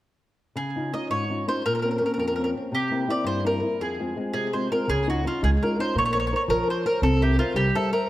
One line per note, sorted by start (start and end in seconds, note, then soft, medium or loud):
0.56 0.92 C#3 soft
0.56 0.91 G#4 medium
0.76 0.92 C#4 soft
0.76 0.93 D#4 soft
0.76 0.93 F4 soft
0.93 1.23 C#4 soft
0.93 1.24 D#4 soft
0.93 1.24 F4 soft
0.93 1.10 D#5 medium
1.10 1.47 G#2 soft
1.10 1.46 C#5 medium
1.30 1.46 C#4 soft
1.30 1.46 D#4 soft
1.30 1.47 F4 soft
1.47 1.62 C#4 soft
1.47 1.62 D#4 soft
1.47 1.62 F4 soft
1.47 1.65 C5 medium
1.66 2.01 A#2 soft
1.66 1.73 A#4 medium
1.75 1.81 A#4 soft
1.82 2.00 A#3 soft
1.82 2.00 C4 soft
1.82 2.01 C#4 soft
1.82 1.89 A#4 soft
1.91 1.97 A#4 soft
1.98 2.31 A#3 soft
1.98 2.31 C4 soft
1.98 2.31 C#4 soft
1.98 2.04 A#4 soft
2.06 2.12 A#4 soft
2.14 2.54 F2 medium
2.14 2.18 A#4 soft
2.19 2.26 A#4 soft
2.28 2.34 A#4 soft
2.36 2.54 A#3 soft
2.36 2.55 C4 soft
2.36 2.55 C#4 soft
2.36 2.42 A#4 soft
2.44 2.49 A#4 soft
2.55 2.69 A#3 soft
2.55 2.69 C4 soft
2.55 2.70 C#4 soft
2.72 3.07 C3 medium
2.72 3.11 G4 medium
2.91 3.06 A#3 soft
2.91 3.07 C4 soft
2.91 3.07 E4 soft
3.07 3.37 A#3 soft
3.07 3.37 C4 soft
3.07 3.38 E4 soft
3.07 3.26 D5 medium
3.24 3.61 G2 medium
3.24 3.46 C5 medium
3.44 3.60 A#3 soft
3.44 3.61 C4 soft
3.44 3.61 E4 soft
3.44 3.81 A#4 medium
3.61 3.76 A#3 soft
3.61 3.76 C4 soft
3.61 3.76 E4 soft
3.80 4.16 F2 soft
3.80 4.32 G#4 soft
3.99 4.15 G#3 soft
3.99 4.15 C4 soft
3.99 4.16 F4 soft
4.16 4.47 G#3 soft
4.16 4.47 C4 soft
4.16 4.47 F4 soft
4.33 4.70 C3 soft
4.33 4.53 G#4 medium
4.53 4.70 G#3 soft
4.53 4.70 C4 soft
4.53 4.71 F4 soft
4.53 4.71 C5 soft
4.71 4.85 G#3 soft
4.71 4.86 C4 soft
4.71 4.86 F4 soft
4.71 4.88 A#4 medium
4.87 5.24 C#2 medium
4.87 5.24 C#3 medium
4.87 5.08 G#4 medium
5.07 5.23 C#4 soft
5.07 5.24 D#4 soft
5.07 5.24 F4 soft
5.07 5.26 F#4 soft
5.25 5.55 C#4 soft
5.25 5.55 D#4 soft
5.25 5.55 F4 soft
5.25 5.43 F4 medium
5.43 5.56 C#2 medium
5.43 5.79 G#3 medium
5.43 5.49 G#4 medium
5.62 5.78 C#4 soft
5.62 5.78 D#4 soft
5.62 5.78 F4 soft
5.62 5.80 A#4 soft
5.79 5.93 C#4 soft
5.79 5.93 D#4 soft
5.79 5.93 F4 soft
5.79 5.98 C5 medium
5.95 6.30 A#1 medium
5.95 6.31 A#3 medium
5.95 6.04 C#5 medium
6.06 6.12 C#5 medium
6.13 6.32 A#4 soft
6.13 6.32 C5 soft
6.13 6.18 C#5 medium
6.13 6.32 C#5 soft
6.20 6.26 C#5 medium
6.27 6.34 C#5 soft
6.33 6.62 A#4 soft
6.33 6.62 C5 soft
6.33 6.62 C#5 soft
6.33 6.42 C#5 soft
6.48 6.61 A#1 medium
6.48 6.84 F3 medium
6.48 6.70 A#4 medium
6.68 6.84 A#4 soft
6.68 6.84 C5 soft
6.68 6.85 C5 medium
6.68 6.85 C#5 soft
6.86 6.99 A#4 soft
6.86 7.02 A#4 medium
6.86 6.99 C5 soft
6.86 7.00 C#5 soft
7.02 7.37 C2 medium
7.02 7.38 C4 medium
7.02 7.21 A4 medium
7.21 7.38 G4 medium
7.21 7.37 A#4 soft
7.21 7.38 C5 soft
7.21 7.38 E5 soft
7.38 7.55 F4 medium
7.38 7.68 A#4 soft
7.38 7.68 C5 soft
7.38 7.68 E5 soft
7.54 7.68 C2 medium
7.54 7.91 G3 medium
7.54 7.74 G4 medium
7.75 7.92 A4 medium
7.75 7.91 A#4 soft
7.75 7.92 C5 soft
7.75 7.92 E5 soft
7.92 8.06 A#4 soft
7.92 8.09 A#4 medium
7.92 8.06 C5 soft
7.92 8.07 E5 soft